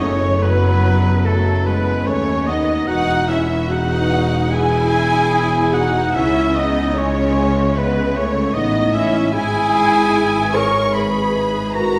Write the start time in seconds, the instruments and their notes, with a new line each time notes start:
Already playing: double bass section F#1, tuba F#1, timpani F#2, cello section F#2, harp F#2 F#3 B4
0.00 viola section A3, clarinet A3, harp B3, french horn section C#4, flute section C#5, oboe C#5, violin section C#5
0.40 viola section F#3, clarinet F#3, french horn section B3, harp A4, flute section B4, violin section B4, oboe B4
0.64 harp B4
0.84 harp D#5
1.05 harp A5
1.24 viola section F#3, clarinet F#3, french horn section A3, flute section A4, violin section A4, oboe A4, harp D#5
1.46 harp A5
1.65 viola section G#3, clarinet G#3, french horn section B3, flute section B4, violin section B4, oboe B4
1.86 harp A4
2.05 double bass section D#2, tuba D#2, cello section D#2, viola section A3, clarinet A3, french horn section C#4, harp D#4, violin section C#5, flute section C#5, oboe C#5
2.27 harp B3
2.47 harp F#3, viola section B3, clarinet B3, french horn section D#4, oboe D#5, violin section D#5, flute section D#5
2.68 harp B3
2.87 double bass section E1, tuba E1, harp E2, cello section E2, viola section D#4, clarinet D#4, french horn section F#4, oboe F#5, violin section F#5, flute section F#5
3.08 harp B2
3.27 harp B3, viola section C#4, clarinet C#4, french horn section E4, oboe E5, violin section E5, flute section E5
3.50 harp E4
3.68 viola section D#4, french horn section F#4, harp G#4, oboe F#5, violin section F#5
3.72 clarinet D#4, flute section F#5
3.92 harp B4
4.12 harp E5
4.32 harp G#5
4.51 viola section E4, clarinet E4, french horn section G#4, harp E5, oboe G#5, violin section G#5, flute section G#5
4.93 harp E5
5.34 harp E4
5.54 harp B3
5.73 harp B2, viola section D#4, clarinet D#4, french horn section F#4, flute section F#5, oboe F#5, violin section F#5
5.95 harp B3
6.13 tuba C#2, double bass section C#2, cello section C#3, harp C#3, viola section C#4, clarinet C#4, french horn section E4, violin section E5, flute section E5, oboe E5
6.35 harp G#3
6.54 viola section B3, clarinet B3, harp C#4, french horn section D#4, violin section D#5, oboe D#5, flute section D#5
6.76 harp E4
6.94 viola section G#3, clarinet G#3, french horn section C#4, harp G#4, violin section C#5, flute section C#5, oboe C#5
7.36 harp E5
7.56 harp G#5
7.75 clarinet G#3, viola section G#3, french horn section B3, violin section B4, flute section B4, oboe B4, harp E5
7.96 harp G#5
8.14 clarinet A3, viola section A3, french horn section C#4, violin section C#5, flute section C#5, oboe C#5, harp E5
8.36 harp G#4
8.54 double bass section A1, tuba A1, cello section A2, viola section B3, clarinet B3, french horn section D#4, harp E4, oboe D#5, violin section D#5, flute section D#5
8.75 harp C#4
8.93 harp G#3, clarinet C#4, viola section C#4, french horn section E4, flute section E5, violin section E5, oboe E5
9.14 harp C#4
9.33 double bass section G#1, tuba G#1, harp G#2, cello section G#2, clarinet E4, viola section E4, french horn section G#4, violin section G#5, flute section G#5, oboe G#5
9.54 harp G#3
9.74 harp B3
9.94 harp E4
10.14 harp G#4
10.35 harp B4
10.53 clarinet A#4, viola section A#4, french horn section C#5, harp E5, violin section C#6, flute section C#6, oboe C#6
10.93 clarinet G#4, viola section G#4, french horn section B4, harp E5, flute section B5, oboe B5, violin section B5
11.15 harp G#5
11.35 harp E5
11.54 harp G#4
11.73 harp E4, clarinet F#4, viola section F#4, french horn section A#4, flute section A#5, violin section A#5, oboe A#5
11.94 harp B3